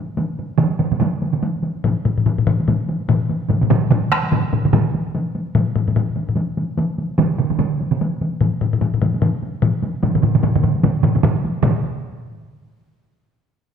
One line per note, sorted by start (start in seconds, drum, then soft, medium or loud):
0.10 taiko high soft
0.17 taiko high medium
0.30 taiko high soft
0.39 taiko high soft
0.51 taiko high soft
0.58 taiko mid loud
0.58 taiko high medium
0.72 taiko high soft
0.79 taiko mid medium
0.79 taiko high medium
0.92 taiko mid medium
0.92 taiko high medium
1.00 taiko mid medium
1.00 taiko high medium
1.14 taiko high soft
1.22 taiko high medium
1.33 taiko mid medium
1.33 taiko high soft
1.43 taiko high medium
1.56 taiko high soft
1.63 taiko high medium
1.76 taiko high soft
1.84 taiko low-mid medium
1.84 taiko high medium
2.05 taiko low-mid medium
2.05 taiko high medium
2.18 taiko low-mid medium
2.18 taiko high soft
2.26 taiko low-mid medium
2.26 taiko high medium
2.38 taiko low-mid medium
2.38 taiko high soft
2.47 taiko low-mid loud
2.47 taiko high medium
2.60 taiko high soft
2.68 taiko low-mid medium
2.68 taiko high medium
2.80 taiko high soft
2.89 taiko high medium
3.01 taiko high soft
3.09 taiko low-mid loud
3.09 taiko high medium
3.21 taiko high soft
3.29 taiko high medium
3.42 taiko high soft
3.49 taiko low-mid medium
3.49 taiko mid medium
3.49 taiko high medium
3.61 taiko low-mid medium
3.61 taiko mid medium
3.61 taiko high soft
3.70 taiko low-mid loud
3.70 taiko mid loud
3.70 taiko high medium
3.91 taiko low-mid loud
3.91 taiko mid loud
3.91 taiko high medium
4.03 taiko high soft
4.12 taiko rim medium
4.12 taiko high medium
4.24 taiko high medium
4.32 taiko low-mid medium
4.32 taiko mid medium
4.32 taiko high medium
4.44 taiko high soft
4.53 taiko low-mid medium
4.53 taiko mid medium
4.53 taiko high medium
4.65 taiko low-mid medium
4.65 taiko mid medium
4.65 taiko high soft
4.73 taiko low-mid loud
4.73 taiko mid loud
4.73 taiko high medium
4.86 taiko high soft
4.94 taiko high medium
5.07 taiko high soft
5.15 taiko high medium
5.27 taiko high soft
5.35 taiko high medium
5.47 taiko high soft
5.55 taiko low-mid loud
5.55 taiko high medium
5.68 taiko high soft
5.75 taiko low-mid medium
5.75 taiko high medium
5.88 taiko low-mid medium
5.88 taiko high soft
5.96 taiko low-mid medium
5.96 taiko high medium
6.08 taiko high soft
6.16 taiko high soft
6.29 taiko low-mid medium
6.29 taiko high soft
6.37 taiko high medium
6.49 taiko high soft
6.57 taiko high medium
6.69 taiko high soft
6.77 taiko high medium
6.90 taiko high soft
6.98 taiko high soft
7.11 taiko high soft
7.18 taiko mid loud
7.18 taiko high medium
7.31 taiko high soft
7.38 taiko mid medium
7.38 taiko high medium
7.51 taiko mid medium
7.51 taiko high soft
7.59 taiko mid medium
7.59 taiko high medium
7.72 taiko high soft
7.81 taiko high soft
7.92 taiko mid medium
7.92 taiko high soft
8.01 taiko high medium
8.13 taiko high soft
8.21 taiko high medium
8.33 taiko high soft
8.41 taiko low-mid medium
8.41 taiko high medium
8.54 taiko high soft
8.61 taiko low-mid medium
8.61 taiko high soft
8.73 taiko low-mid medium
8.73 taiko high soft
8.81 taiko low-mid medium
8.81 taiko high medium
8.94 taiko low-mid medium
8.94 taiko high soft
9.02 taiko low-mid medium
9.02 taiko high medium
9.14 taiko high medium
9.22 taiko low-mid medium
9.22 taiko high medium
9.42 taiko high soft
9.55 taiko high soft
9.62 taiko low-mid loud
9.62 taiko high medium
9.75 taiko high soft
9.82 taiko high medium
9.95 taiko high soft
10.03 taiko low-mid medium
10.03 taiko mid medium
10.03 taiko high medium
10.15 taiko low-mid medium
10.15 taiko mid medium
10.15 taiko high soft
10.23 taiko low-mid medium
10.23 taiko mid medium
10.23 taiko high medium
10.35 taiko low-mid medium
10.35 taiko mid medium
10.35 taiko high soft
10.43 taiko low-mid medium
10.43 taiko mid medium
10.43 taiko high medium
10.55 taiko low-mid medium
10.55 taiko mid medium
10.55 taiko high soft
10.63 taiko low-mid medium
10.63 taiko mid medium
10.63 taiko high medium
10.75 taiko high soft
10.83 taiko low-mid medium
10.83 taiko mid medium
10.83 taiko high medium
10.96 taiko high soft
11.03 taiko low-mid medium
11.03 taiko mid medium
11.03 taiko high medium
11.16 taiko low-mid medium
11.16 taiko mid medium
11.16 taiko high soft
11.23 taiko low-mid loud
11.23 taiko mid loud
11.23 taiko high medium
11.36 taiko high soft
11.45 taiko high medium
11.57 taiko high soft
11.63 taiko low-mid loud
11.63 taiko mid loud
11.63 taiko high medium